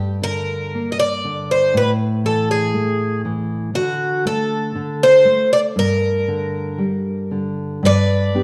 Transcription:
Already playing: nylon-string guitar G2
0.22 nylon-string guitar D3, twelve-string acoustic guitar A#4
0.75 nylon-string guitar A#3
0.92 twelve-string acoustic guitar D#5
0.99 twelve-string acoustic guitar D5
1.25 nylon-string guitar D3
1.51 twelve-string acoustic guitar C5
1.74 nylon-string guitar A2, twelve-string acoustic guitar B4
2.24 nylon-string guitar E3, twelve-string acoustic guitar A4
2.51 twelve-string acoustic guitar G#4
2.74 nylon-string guitar A3
3.25 nylon-string guitar E3
3.74 nylon-string guitar D3, twelve-string acoustic guitar F#4
4.25 nylon-string guitar A3, twelve-string acoustic guitar A4
4.75 nylon-string guitar D3
5.03 twelve-string acoustic guitar C5
5.25 nylon-string guitar A3
5.53 twelve-string acoustic guitar D5
5.76 nylon-string guitar G2, twelve-string acoustic guitar A#4
6.28 nylon-string guitar D3
6.78 nylon-string guitar G3
7.31 nylon-string guitar D3
7.83 nylon-string guitar G2, twelve-string acoustic guitar B4 D5
8.34 nylon-string guitar B3 D4 G4

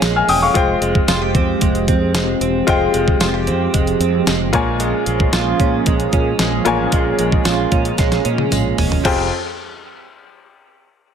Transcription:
Already playing: grand piano A#2 F4 A#4 C#5 G#5, analog synth pad F3 A#3 C#4 G#4, clean electric guitar C#4 F4
0.02 fretless electric bass A#1, clean electric guitar G#3, snare, closed hi-hat, tambourine
0.16 grand piano G#5 F6
0.28 fretless electric bass E1, clean electric guitar C#4, grand piano G5 D#6, open hi-hat
0.42 grand piano F5 C#6
0.54 fretless electric bass F1, analog synth pad F3 G#3 C4 G4, clean electric guitar G#3, grand piano G#3 F4 C5 G5, kick, closed hi-hat
0.81 fretless electric bass F1, clean electric guitar G#3, closed hi-hat
0.95 kick
1.08 fretless electric bass F1, clean electric guitar F4, snare, closed hi-hat, tambourine
1.22 clean electric guitar G4
1.34 fretless electric bass F2, clean electric guitar C4, kick, closed hi-hat
1.61 fretless electric bass F1, clean electric guitar G#3, kick, closed hi-hat
1.75 closed hi-hat
1.88 fretless electric bass F2, clean electric guitar C4, kick, closed hi-hat
2.14 fretless electric bass F1, clean electric guitar G#3, snare, closed hi-hat, tambourine
2.41 fretless electric bass E1, clean electric guitar C4, closed hi-hat
2.67 fretless electric bass F1, grand piano G#3 F4 C5 G5, clean electric guitar G#3, kick, closed hi-hat
2.94 fretless electric bass F1, clean electric guitar G#3, closed hi-hat
3.08 kick
3.20 fretless electric bass F1, clean electric guitar F4, snare, closed hi-hat, tambourine
3.34 clean electric guitar G4
3.47 fretless electric bass F2, clean electric guitar C4, closed hi-hat
3.74 fretless electric bass F1, clean electric guitar G#3, kick, closed hi-hat
3.87 closed hi-hat
4.00 fretless electric bass F2, clean electric guitar C4, closed hi-hat
4.27 fretless electric bass F1, clean electric guitar G#3, snare, closed hi-hat, tambourine
4.53 fretless electric bass A#1, grand piano A#2 F4 A#4 C#5 G#5, clean electric guitar G#3, analog synth pad A#3 C#4 G#4, kick, closed hi-hat
4.80 clean electric guitar G#3, closed hi-hat
5.06 fretless electric bass A#1, clean electric guitar G#3, closed hi-hat
5.20 kick
5.33 fretless electric bass A#1, clean electric guitar F4, snare, closed hi-hat, tambourine
5.60 fretless electric bass A#2, clean electric guitar C#4, kick, closed hi-hat
5.86 fretless electric bass A#1, clean electric guitar G#3, kick, closed hi-hat
6.00 closed hi-hat
6.13 fretless electric bass A#2, clean electric guitar C#4, kick, closed hi-hat
6.39 fretless electric bass A#1, clean electric guitar G#3, snare, closed hi-hat, tambourine
6.65 fretless electric bass A1, grand piano A#2 F4 A#4 C#5 G#5, clean electric guitar C#4, closed hi-hat
6.92 fretless electric bass A#1, clean electric guitar G#3, kick, closed hi-hat
7.19 fretless electric bass A#1, clean electric guitar G#3, closed hi-hat
7.32 kick
7.45 fretless electric bass A#1, clean electric guitar F4, snare, closed hi-hat, tambourine
7.72 fretless electric bass A#2, clean electric guitar C#4, kick, closed hi-hat
7.85 closed hi-hat
7.98 fretless electric bass A#1, clean electric guitar G#3, kick, snare, closed hi-hat
8.12 snare, closed hi-hat
8.25 fretless electric bass A#2, clean electric guitar C#4, closed hi-hat
8.38 high tom
8.52 fretless electric bass A#1, clean electric guitar G#3, closed hi-hat, mid tom, tambourine
8.78 fretless electric bass E1, clean electric guitar C#4, floor tom, open hi-hat
8.92 floor tom
9.04 fretless electric bass F1, grand piano F2 F4 G#4 C5 G5, clean electric guitar F3 G#3 C4 G4, kick, crash, tambourine

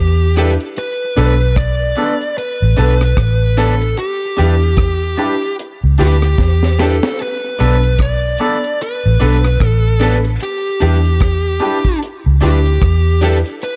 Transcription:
Already playing: fingered electric bass E2, lead electric guitar G4
0.36 upright piano D4 E4 G4, clean electric guitar D4 G4 B4, lead electric guitar A4, cross-stick, closed hi-hat
0.60 closed hi-hat
0.77 lead electric guitar B4, closed hi-hat
1.16 fingered electric bass B1, upright piano B3 D4 A4, clean electric guitar D4 A4 B4, closed hi-hat
1.41 closed hi-hat
1.56 lead electric guitar D5, kick, cross-stick, closed hi-hat
1.96 upright piano B3 D4 A4, clean electric guitar D4 A4 B4, closed hi-hat
2.21 closed hi-hat
2.38 lead electric guitar B4, closed hi-hat
2.62 fingered electric bass A1
2.77 fingered electric bass B1, upright piano B3 D4 A4, clean electric guitar D4 A4 B4, closed hi-hat
3.01 cross-stick, closed hi-hat
3.17 fingered electric bass A1, kick, cross-stick, closed hi-hat
3.57 upright piano B3 D4 A4, clean electric guitar D4 A4 B4, lead electric guitar A4, cross-stick, closed hi-hat
3.80 muted clean electric guitar stroke, closed hi-hat
3.97 lead electric guitar G4, closed hi-hat
4.37 fingered electric bass E2, clean electric guitar D4 G4 B4, upright piano D4 E4 G4, closed hi-hat
4.62 closed hi-hat
4.77 kick, cross-stick, closed hi-hat
5.16 clean electric guitar D4 G4 B4, upright piano D4 E4 G4, closed hi-hat
5.42 closed hi-hat
5.59 closed hi-hat
5.84 fingered electric bass C#2
5.98 fingered electric bass D2, upright piano D4 E4 G4, clean electric guitar D4 G4 B4, lead electric guitar G4, closed hi-hat
6.22 cross-stick, closed hi-hat
6.38 fingered electric bass E2, kick, snare
6.63 snare
6.79 upright piano D4 E4 G4, clean electric guitar D4 G4 B4, lead electric guitar A4, snare
7.03 snare
7.19 lead electric guitar B4, closed hi-hat
7.59 fingered electric bass B1, upright piano B3 D4 A4, clean electric guitar D4 A4 B4, closed hi-hat
7.83 closed hi-hat
7.98 lead electric guitar D5, kick, cross-stick, closed hi-hat
8.38 upright piano B3 D4 A4, clean electric guitar D4 A4 B4, closed hi-hat
8.64 closed hi-hat
8.82 lead electric guitar B4, closed hi-hat
9.06 fingered electric bass A1
9.20 fingered electric bass B1, upright piano B3 D4 A4, clean electric guitar D4 A4 B4, closed hi-hat
9.44 cross-stick, closed hi-hat
9.60 fingered electric bass A1, kick, cross-stick, closed hi-hat
9.67 lead electric guitar A4
10.00 upright piano B3 D4 A4, clean electric guitar D4 A4 B4, lead electric guitar A4, cross-stick, closed hi-hat
10.24 muted clean electric guitar stroke, closed hi-hat
10.40 lead electric guitar G4, closed hi-hat
10.80 fingered electric bass E2, clean electric guitar D4 G4 B4, upright piano D4 E4 G4, closed hi-hat
11.05 closed hi-hat
11.20 kick, cross-stick, closed hi-hat
11.60 clean electric guitar D4 G4 B4, upright piano D4 E4 G4, closed hi-hat
11.85 kick, closed hi-hat
12.03 closed hi-hat
12.26 fingered electric bass C#2
12.41 fingered electric bass D2, clean electric guitar D4 G4 B4, upright piano D4 E4 G4, lead electric guitar G4, closed hi-hat
12.66 closed hi-hat
12.82 fingered electric bass E2, kick, cross-stick, closed hi-hat
13.21 clean electric guitar D4 G4 B4, upright piano D4 E4 G4, lead electric guitar A4, closed hi-hat
13.46 closed hi-hat
13.62 lead electric guitar B4, closed hi-hat

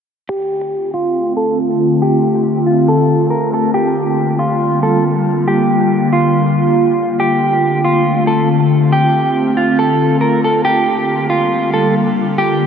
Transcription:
0.29 ambient pad D3 A3 C4 F4, clean electric guitar G4
0.94 clean electric guitar F4
1.37 clean electric guitar A4
2.02 clean electric guitar G4
2.66 clean electric guitar F4
2.88 clean electric guitar A4
3.30 clean electric guitar A#4
3.54 clean electric guitar A4
3.74 ambient pad G3 A#3 F4, clean electric guitar G4
4.39 clean electric guitar F4
4.83 clean electric guitar A4
5.48 clean electric guitar G4
6.13 clean electric guitar F4
7.20 ambient pad A3 C4, clean electric guitar G4
7.84 clean electric guitar F4
8.27 clean electric guitar A4
8.93 clean electric guitar G4
9.57 clean electric guitar F4
9.79 clean electric guitar A4
10.21 clean electric guitar A#4
10.44 clean electric guitar A4
10.65 ambient pad D3 G3 A#3, clean electric guitar G4
11.30 clean electric guitar F4
11.74 clean electric guitar A4
12.38 clean electric guitar G4

